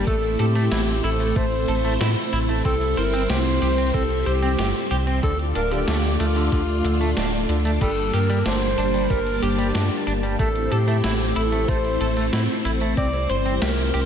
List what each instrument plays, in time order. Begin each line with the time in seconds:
0.07 analog synth bass A1, string machine A3 C4 E4 C5, clean electric guitar A3, alto saxophone A4, kick, closed hi-hat
0.23 closed hi-hat
0.39 analog synth bass A2, alto saxophone G4, clean electric guitar A4, closed hi-hat
0.55 clean electric guitar A3, closed hi-hat
0.72 analog synth bass A1, clean electric guitar E4, snare, closed hi-hat
0.88 closed hi-hat
1.04 analog synth bass A1, clean electric guitar E4, alto saxophone A4, closed hi-hat
1.20 clean electric guitar A3, closed hi-hat
1.36 analog synth bass A1, clean electric guitar A3, alto saxophone C5, kick, closed hi-hat
1.52 closed hi-hat
1.68 analog synth bass A1, clean electric guitar A4, closed hi-hat
1.84 clean electric guitar A3, closed hi-hat
2.00 analog synth bass A2, clean electric guitar E4, snare, closed hi-hat
2.17 closed hi-hat
2.33 analog synth bass A1, clean electric guitar E4, closed hi-hat
2.49 clean electric guitar A3, closed hi-hat
2.65 analog synth bass C2, string machine G3, clean electric guitar C4, alto saxophone A4, kick, closed hi-hat
2.81 closed hi-hat
2.97 analog synth bass G1, alto saxophone A#4, clean electric guitar C5, closed hi-hat
3.13 clean electric guitar C4, closed hi-hat
3.30 analog synth bass C2, clean electric guitar G4, alto saxophone C5, snare, closed hi-hat
3.46 closed hi-hat
3.62 analog synth bass C2, clean electric guitar G4, closed hi-hat
3.78 clean electric guitar C4, closed hi-hat
3.94 analog synth bass C2, clean electric guitar C4, alto saxophone A4, kick, closed hi-hat
4.10 closed hi-hat
4.26 analog synth bass C2, alto saxophone G4, clean electric guitar C5, closed hi-hat
4.42 clean electric guitar C4, closed hi-hat
4.59 analog synth bass G1, clean electric guitar G4, snare, closed hi-hat
4.75 closed hi-hat
4.91 analog synth bass C2, clean electric guitar G4, closed hi-hat
5.07 clean electric guitar C4, closed hi-hat
5.23 analog synth bass D2, clean electric guitar D3, string machine A3 D4 F4 D5, alto saxophone A4, kick, closed hi-hat
5.39 closed hi-hat
5.55 analog synth bass D1, clean electric guitar D4, alto saxophone A#4, closed hi-hat
5.71 clean electric guitar D3, alto saxophone G4, closed hi-hat
5.88 analog synth bass D2, clean electric guitar A3, snare, closed hi-hat
6.04 closed hi-hat
6.20 analog synth bass D2, clean electric guitar A3, alto saxophone F4, closed hi-hat
6.36 clean electric guitar D3, closed hi-hat
6.52 analog synth bass D2, clean electric guitar D3, kick, closed hi-hat
6.68 closed hi-hat
6.84 analog synth bass D2, clean electric guitar D3, closed hi-hat
7.01 clean electric guitar A3, closed hi-hat
7.17 analog synth bass D1, clean electric guitar D4, snare, closed hi-hat
7.33 closed hi-hat
7.49 analog synth bass D2, clean electric guitar D3, closed hi-hat
7.65 clean electric guitar A3, closed hi-hat
7.81 analog synth bass G1, clean electric guitar G3, string machine G3 A#3 A5, alto saxophone A4, kick, closed hi-hat, crash
7.98 closed hi-hat
8.13 analog synth bass G2, clean electric guitar G4, alto saxophone A#4, closed hi-hat
8.30 clean electric guitar G3, closed hi-hat
8.46 analog synth bass G1, clean electric guitar D4, alto saxophone C5, snare, closed hi-hat
8.62 closed hi-hat
8.78 analog synth bass G1, clean electric guitar D4, closed hi-hat
8.94 clean electric guitar G3, closed hi-hat
9.10 analog synth bass G1, clean electric guitar G3, alto saxophone A#4, kick, closed hi-hat
9.27 closed hi-hat
9.42 analog synth bass G1, clean electric guitar G4, alto saxophone G4, closed hi-hat
9.58 clean electric guitar G3, closed hi-hat
9.75 analog synth bass G2, clean electric guitar D4, snare, closed hi-hat
9.91 closed hi-hat
10.07 analog synth bass G1, clean electric guitar D4, closed hi-hat
10.23 clean electric guitar G3, closed hi-hat
10.39 analog synth bass A1, clean electric guitar A3, string machine A3 C4 E4 C5, alto saxophone A4, kick, closed hi-hat
10.56 closed hi-hat
10.71 analog synth bass A2, alto saxophone G4, clean electric guitar A4, closed hi-hat
10.88 clean electric guitar A3, closed hi-hat
11.04 analog synth bass A1, clean electric guitar E4, snare, closed hi-hat
11.20 closed hi-hat
11.36 analog synth bass A1, clean electric guitar E4, alto saxophone A4, closed hi-hat
11.52 clean electric guitar A3, closed hi-hat
11.68 analog synth bass A1, clean electric guitar A3, alto saxophone C5, kick, closed hi-hat
11.85 closed hi-hat
12.01 analog synth bass A1, clean electric guitar A4, closed hi-hat
12.17 clean electric guitar A3, closed hi-hat
12.33 analog synth bass A2, clean electric guitar E4, snare, closed hi-hat
12.49 closed hi-hat
12.65 analog synth bass A1, clean electric guitar E4, closed hi-hat
12.81 clean electric guitar A3, closed hi-hat
12.97 analog synth bass C2, string machine G3 E4, clean electric guitar C4, alto saxophone D5, kick, closed hi-hat
13.13 closed hi-hat
13.30 analog synth bass G1, clean electric guitar C5, alto saxophone C5, closed hi-hat
13.46 clean electric guitar C4, closed hi-hat
13.62 analog synth bass C2, clean electric guitar G4, alto saxophone A#4, snare, closed hi-hat
13.78 closed hi-hat
13.94 analog synth bass C2, clean electric guitar G4, closed hi-hat